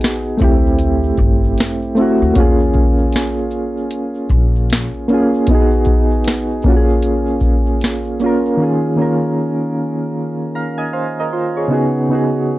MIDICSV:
0, 0, Header, 1, 4, 480
1, 0, Start_track
1, 0, Tempo, 779221
1, 1449, Time_signature, 4, 2, 24, 8
1, 7754, End_track
2, 0, Start_track
2, 0, Title_t, "Synth keys"
2, 0, Program_c, 0, 88
2, 0, Control_c, 0, 64, 127
2, 0, Note_on_c, 0, 59, 78
2, 0, Note_on_c, 0, 63, 75
2, 0, Note_on_c, 0, 66, 70
2, 0, Note_on_c, 0, 68, 89
2, 230, Note_on_c, 0, 57, 84
2, 243, Note_on_c, 0, 60, 71
2, 244, Note_off_c, 0, 59, 0
2, 250, Note_off_c, 0, 63, 0
2, 256, Note_on_c, 0, 64, 82
2, 257, Note_off_c, 0, 66, 0
2, 258, Control_c, 0, 64, 0
2, 263, Note_off_c, 0, 68, 0
2, 270, Note_on_c, 0, 67, 95
2, 385, Control_c, 0, 64, 127
2, 1018, Note_off_c, 0, 57, 0
2, 1025, Note_off_c, 0, 60, 0
2, 1032, Note_off_c, 0, 64, 0
2, 1039, Note_off_c, 0, 67, 0
2, 1201, Note_on_c, 0, 57, 92
2, 1214, Note_on_c, 0, 60, 74
2, 1227, Note_on_c, 0, 64, 70
2, 1239, Note_on_c, 0, 66, 102
2, 1399, Note_off_c, 0, 57, 0
2, 1405, Note_off_c, 0, 60, 0
2, 1412, Note_off_c, 0, 64, 0
2, 1418, Note_off_c, 0, 66, 0
2, 1439, Note_on_c, 0, 58, 79
2, 1453, Note_on_c, 0, 61, 85
2, 1456, Control_c, 0, 64, 0
2, 1465, Note_on_c, 0, 65, 84
2, 1478, Note_on_c, 0, 68, 98
2, 1582, Control_c, 0, 64, 127
2, 2164, Note_off_c, 0, 58, 0
2, 2171, Note_off_c, 0, 61, 0
2, 2177, Note_off_c, 0, 65, 0
2, 2183, Note_off_c, 0, 68, 0
2, 3130, Note_on_c, 0, 58, 90
2, 3142, Note_on_c, 0, 61, 80
2, 3157, Note_on_c, 0, 65, 75
2, 3167, Note_on_c, 0, 68, 88
2, 3324, Note_off_c, 0, 58, 0
2, 3329, Note_off_c, 0, 61, 0
2, 3337, Note_off_c, 0, 65, 0
2, 3342, Note_off_c, 0, 68, 0
2, 3378, Control_c, 0, 64, 0
2, 3380, Note_on_c, 0, 59, 76
2, 3392, Note_on_c, 0, 63, 89
2, 3405, Note_on_c, 0, 66, 77
2, 3416, Note_on_c, 0, 68, 100
2, 3500, Control_c, 0, 64, 127
2, 4090, Note_on_c, 0, 58, 83
2, 4094, Note_off_c, 0, 59, 0
2, 4099, Control_c, 0, 64, 0
2, 4101, Note_off_c, 0, 63, 0
2, 4102, Note_on_c, 0, 61, 79
2, 4107, Note_off_c, 0, 66, 0
2, 4113, Note_off_c, 0, 68, 0
2, 4115, Note_on_c, 0, 65, 74
2, 4128, Note_on_c, 0, 66, 70
2, 4158, Note_off_c, 0, 66, 0
2, 4167, Note_on_c, 0, 68, 89
2, 4213, Control_c, 0, 64, 127
2, 4869, Note_off_c, 0, 58, 0
2, 4875, Note_off_c, 0, 61, 0
2, 4881, Note_off_c, 0, 65, 0
2, 4907, Note_off_c, 0, 68, 0
2, 5051, Note_on_c, 0, 58, 77
2, 5062, Note_on_c, 0, 61, 74
2, 5074, Note_on_c, 0, 65, 82
2, 5088, Note_on_c, 0, 70, 85
2, 5244, Note_off_c, 0, 58, 0
2, 5249, Note_off_c, 0, 61, 0
2, 5255, Note_off_c, 0, 65, 0
2, 5262, Note_off_c, 0, 70, 0
2, 5279, Note_on_c, 0, 51, 75
2, 5288, Note_on_c, 0, 58, 63
2, 5297, Control_c, 0, 64, 0
2, 5297, Note_on_c, 0, 61, 63
2, 5308, Note_on_c, 0, 65, 70
2, 5317, Note_on_c, 0, 68, 78
2, 5398, Control_c, 0, 64, 127
2, 5478, Note_off_c, 0, 51, 0
2, 5483, Note_off_c, 0, 58, 0
2, 5487, Note_off_c, 0, 61, 0
2, 5492, Note_off_c, 0, 65, 0
2, 5497, Note_off_c, 0, 68, 0
2, 5518, Note_on_c, 0, 51, 73
2, 5526, Note_on_c, 0, 58, 77
2, 5536, Note_on_c, 0, 61, 74
2, 5545, Note_on_c, 0, 65, 62
2, 5554, Note_on_c, 0, 70, 79
2, 6243, Note_off_c, 0, 51, 0
2, 6247, Note_off_c, 0, 58, 0
2, 6253, Note_off_c, 0, 61, 0
2, 6257, Note_off_c, 0, 65, 0
2, 6262, Note_off_c, 0, 70, 0
2, 6500, Note_on_c, 0, 82, 47
2, 6503, Note_on_c, 0, 77, 44
2, 6635, Note_off_c, 0, 82, 0
2, 6637, Note_off_c, 0, 77, 0
2, 6639, Note_on_c, 0, 80, 58
2, 6644, Note_on_c, 0, 75, 46
2, 6726, Note_off_c, 0, 80, 0
2, 6728, Note_off_c, 0, 75, 0
2, 6734, Note_on_c, 0, 77, 54
2, 6735, Note_on_c, 0, 72, 52
2, 6872, Note_off_c, 0, 77, 0
2, 6873, Note_off_c, 0, 72, 0
2, 6898, Note_on_c, 0, 75, 60
2, 6902, Note_on_c, 0, 70, 48
2, 6976, Note_off_c, 0, 75, 0
2, 6978, Note_off_c, 0, 70, 0
2, 6979, Note_on_c, 0, 72, 58
2, 6981, Note_on_c, 0, 65, 52
2, 7114, Note_off_c, 0, 72, 0
2, 7116, Note_off_c, 0, 65, 0
2, 7126, Note_on_c, 0, 73, 56
2, 7129, Note_on_c, 0, 68, 49
2, 7193, Note_on_c, 0, 49, 70
2, 7201, Note_on_c, 0, 59, 73
2, 7212, Note_on_c, 0, 63, 67
2, 7218, Control_c, 0, 64, 0
2, 7223, Note_off_c, 0, 68, 0
2, 7223, Note_on_c, 0, 66, 70
2, 7231, Note_on_c, 0, 68, 85
2, 7317, Control_c, 0, 64, 127
2, 7350, Note_off_c, 0, 73, 0
2, 7395, Note_off_c, 0, 49, 0
2, 7399, Note_off_c, 0, 59, 0
2, 7404, Note_off_c, 0, 63, 0
2, 7410, Note_off_c, 0, 66, 0
2, 7414, Note_off_c, 0, 68, 0
2, 7443, Note_on_c, 0, 49, 64
2, 7453, Note_on_c, 0, 59, 66
2, 7462, Note_on_c, 0, 63, 67
2, 7471, Note_on_c, 0, 66, 77
2, 7482, Note_on_c, 0, 68, 81
2, 7754, Note_off_c, 0, 49, 0
2, 7754, Note_off_c, 0, 59, 0
2, 7754, Note_off_c, 0, 63, 0
2, 7754, Note_off_c, 0, 66, 0
2, 7754, Note_off_c, 0, 68, 0
2, 7754, End_track
3, 0, Start_track
3, 0, Title_t, "Upright bass"
3, 0, Program_c, 1, 32
3, 255, Note_on_c, 1, 38, 103
3, 677, Note_off_c, 1, 38, 0
3, 729, Note_on_c, 1, 31, 93
3, 942, Note_off_c, 1, 31, 0
3, 1367, Note_on_c, 1, 38, 88
3, 1444, Note_off_c, 1, 38, 0
3, 1458, Note_on_c, 1, 39, 95
3, 1879, Note_off_c, 1, 39, 0
3, 2650, Note_on_c, 1, 34, 94
3, 2992, Note_off_c, 1, 34, 0
3, 7754, End_track
4, 0, Start_track
4, 0, Title_t, "Drums"
4, 6, Note_on_c, 9, 42, 52
4, 11, Note_on_c, 9, 82, 76
4, 26, Note_on_c, 9, 38, 120
4, 67, Note_off_c, 9, 42, 0
4, 73, Note_off_c, 9, 82, 0
4, 88, Note_off_c, 9, 38, 0
4, 163, Note_on_c, 9, 82, 35
4, 224, Note_off_c, 9, 82, 0
4, 238, Note_on_c, 9, 82, 48
4, 246, Note_off_c, 9, 82, 0
4, 246, Note_on_c, 9, 82, 55
4, 251, Note_on_c, 9, 36, 108
4, 308, Note_off_c, 9, 82, 0
4, 313, Note_off_c, 9, 36, 0
4, 409, Note_on_c, 9, 82, 53
4, 471, Note_off_c, 9, 82, 0
4, 484, Note_on_c, 9, 42, 73
4, 488, Note_on_c, 9, 82, 66
4, 546, Note_off_c, 9, 42, 0
4, 550, Note_off_c, 9, 82, 0
4, 636, Note_on_c, 9, 82, 42
4, 697, Note_off_c, 9, 82, 0
4, 723, Note_on_c, 9, 82, 38
4, 725, Note_on_c, 9, 36, 83
4, 784, Note_off_c, 9, 82, 0
4, 787, Note_off_c, 9, 36, 0
4, 886, Note_on_c, 9, 82, 46
4, 948, Note_off_c, 9, 82, 0
4, 969, Note_on_c, 9, 82, 59
4, 971, Note_on_c, 9, 42, 62
4, 988, Note_on_c, 9, 38, 103
4, 1031, Note_off_c, 9, 82, 0
4, 1033, Note_off_c, 9, 42, 0
4, 1049, Note_off_c, 9, 38, 0
4, 1120, Note_on_c, 9, 82, 48
4, 1182, Note_off_c, 9, 82, 0
4, 1209, Note_on_c, 9, 82, 47
4, 1213, Note_off_c, 9, 82, 0
4, 1213, Note_on_c, 9, 82, 39
4, 1275, Note_off_c, 9, 82, 0
4, 1370, Note_on_c, 9, 82, 56
4, 1432, Note_off_c, 9, 82, 0
4, 1449, Note_on_c, 9, 82, 54
4, 1450, Note_on_c, 9, 42, 95
4, 1453, Note_on_c, 9, 36, 97
4, 1510, Note_off_c, 9, 82, 0
4, 1512, Note_off_c, 9, 42, 0
4, 1515, Note_off_c, 9, 36, 0
4, 1596, Note_on_c, 9, 82, 52
4, 1657, Note_off_c, 9, 82, 0
4, 1685, Note_on_c, 9, 82, 45
4, 1693, Note_on_c, 9, 36, 94
4, 1747, Note_off_c, 9, 82, 0
4, 1755, Note_off_c, 9, 36, 0
4, 1838, Note_on_c, 9, 82, 44
4, 1900, Note_off_c, 9, 82, 0
4, 1925, Note_on_c, 9, 42, 57
4, 1931, Note_on_c, 9, 82, 77
4, 1946, Note_on_c, 9, 38, 106
4, 1987, Note_off_c, 9, 42, 0
4, 1992, Note_off_c, 9, 82, 0
4, 2007, Note_off_c, 9, 38, 0
4, 2082, Note_on_c, 9, 82, 38
4, 2143, Note_off_c, 9, 82, 0
4, 2161, Note_on_c, 9, 82, 47
4, 2164, Note_off_c, 9, 82, 0
4, 2164, Note_on_c, 9, 82, 55
4, 2226, Note_off_c, 9, 82, 0
4, 2324, Note_on_c, 9, 82, 50
4, 2386, Note_off_c, 9, 82, 0
4, 2405, Note_on_c, 9, 82, 71
4, 2407, Note_on_c, 9, 42, 80
4, 2467, Note_off_c, 9, 82, 0
4, 2468, Note_off_c, 9, 42, 0
4, 2554, Note_on_c, 9, 82, 44
4, 2616, Note_off_c, 9, 82, 0
4, 2646, Note_on_c, 9, 82, 43
4, 2647, Note_on_c, 9, 36, 89
4, 2708, Note_off_c, 9, 36, 0
4, 2708, Note_off_c, 9, 82, 0
4, 2806, Note_on_c, 9, 82, 49
4, 2868, Note_off_c, 9, 82, 0
4, 2890, Note_on_c, 9, 82, 64
4, 2895, Note_on_c, 9, 42, 66
4, 2912, Note_on_c, 9, 38, 105
4, 2951, Note_off_c, 9, 82, 0
4, 2957, Note_off_c, 9, 42, 0
4, 2973, Note_off_c, 9, 38, 0
4, 3041, Note_on_c, 9, 82, 48
4, 3102, Note_off_c, 9, 82, 0
4, 3131, Note_on_c, 9, 82, 43
4, 3135, Note_off_c, 9, 82, 0
4, 3135, Note_on_c, 9, 82, 37
4, 3196, Note_off_c, 9, 82, 0
4, 3290, Note_on_c, 9, 82, 50
4, 3351, Note_off_c, 9, 82, 0
4, 3366, Note_on_c, 9, 82, 51
4, 3368, Note_on_c, 9, 42, 92
4, 3373, Note_on_c, 9, 36, 102
4, 3428, Note_off_c, 9, 82, 0
4, 3430, Note_off_c, 9, 42, 0
4, 3435, Note_off_c, 9, 36, 0
4, 3516, Note_on_c, 9, 82, 49
4, 3577, Note_off_c, 9, 82, 0
4, 3603, Note_on_c, 9, 42, 44
4, 3603, Note_on_c, 9, 82, 47
4, 3613, Note_on_c, 9, 36, 87
4, 3665, Note_off_c, 9, 42, 0
4, 3665, Note_off_c, 9, 82, 0
4, 3674, Note_off_c, 9, 36, 0
4, 3761, Note_on_c, 9, 82, 47
4, 3822, Note_off_c, 9, 82, 0
4, 3846, Note_on_c, 9, 42, 62
4, 3852, Note_on_c, 9, 82, 68
4, 3866, Note_on_c, 9, 38, 105
4, 3908, Note_off_c, 9, 42, 0
4, 3914, Note_off_c, 9, 82, 0
4, 3928, Note_off_c, 9, 38, 0
4, 4005, Note_on_c, 9, 82, 38
4, 4067, Note_off_c, 9, 82, 0
4, 4079, Note_on_c, 9, 82, 42
4, 4083, Note_off_c, 9, 82, 0
4, 4083, Note_on_c, 9, 82, 50
4, 4092, Note_on_c, 9, 36, 117
4, 4144, Note_off_c, 9, 82, 0
4, 4154, Note_off_c, 9, 36, 0
4, 4244, Note_on_c, 9, 82, 50
4, 4306, Note_off_c, 9, 82, 0
4, 4325, Note_on_c, 9, 82, 62
4, 4327, Note_on_c, 9, 42, 73
4, 4386, Note_off_c, 9, 82, 0
4, 4389, Note_off_c, 9, 42, 0
4, 4473, Note_on_c, 9, 82, 47
4, 4534, Note_off_c, 9, 82, 0
4, 4562, Note_on_c, 9, 82, 43
4, 4565, Note_on_c, 9, 36, 80
4, 4572, Note_off_c, 9, 82, 0
4, 4572, Note_on_c, 9, 82, 59
4, 4627, Note_off_c, 9, 36, 0
4, 4633, Note_off_c, 9, 82, 0
4, 4720, Note_on_c, 9, 82, 46
4, 4781, Note_off_c, 9, 82, 0
4, 4805, Note_on_c, 9, 82, 59
4, 4813, Note_on_c, 9, 42, 63
4, 4830, Note_on_c, 9, 38, 87
4, 4866, Note_off_c, 9, 82, 0
4, 4875, Note_off_c, 9, 42, 0
4, 4891, Note_off_c, 9, 38, 0
4, 4959, Note_on_c, 9, 82, 46
4, 5020, Note_off_c, 9, 82, 0
4, 5045, Note_on_c, 9, 82, 44
4, 5050, Note_off_c, 9, 82, 0
4, 5050, Note_on_c, 9, 82, 42
4, 5112, Note_off_c, 9, 82, 0
4, 5208, Note_on_c, 9, 82, 54
4, 5270, Note_off_c, 9, 82, 0
4, 7754, End_track
0, 0, End_of_file